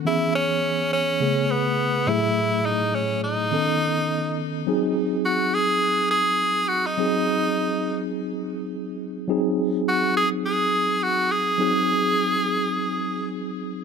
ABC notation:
X:1
M:4/4
L:1/16
Q:"Swing 16ths" 1/4=104
K:G#phr
V:1 name="Tenor saxophone"
E2 C4 C4 B,4 E2- | E2 D2 C2 D8 z2 | z4 F2 G4 G4 F D- | D6- D z8 z |
z4 F2 G2 G4 F2 G2- | G12 z4 |]
V:2 name="Tine electric piano"
[E,B,CG]8 [C,A,B,G]6 [A,,F,A,EG]2- | [A,,F,A,EG]8 [D,B,CA]8 | [F,^B,DG]16 | [F,^B,DG]16 |
[F,^B,DG]16 | [F,^B,DG]16 |]